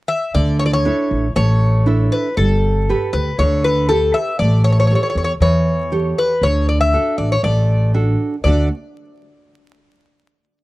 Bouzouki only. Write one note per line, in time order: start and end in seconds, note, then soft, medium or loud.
0.08 0.32 E5 medium
0.35 0.58 D5 medium
0.59 0.65 C#5 medium
0.66 0.73 D5 medium
0.73 1.32 C#5 medium
1.36 2.14 C#5 medium
2.12 2.36 B4 medium
2.37 3.09 A4 medium
3.13 3.37 B4 medium
3.39 3.62 C#5 medium
3.64 3.88 B4 medium
3.89 4.15 A4 medium
4.14 4.38 E5 medium
4.39 4.63 D5 medium
4.64 4.71 C#5 medium
4.72 4.78 C#5 medium
4.80 4.86 C#5 medium
4.87 4.94 C#5 medium
4.95 5.02 C#5 medium
5.03 5.09 C#5 soft
5.10 5.16 C#5 medium
5.18 5.23 C#5 medium
5.24 5.32 C#5 medium
5.42 6.20 C#5 medium
6.18 6.44 B4 medium
6.43 6.68 C#5 medium
6.69 6.80 D5 medium
6.81 7.16 E5 medium
7.18 7.31 D5 medium
7.32 7.43 C#5 medium
7.44 7.91 D5 medium
8.44 8.67 D5 medium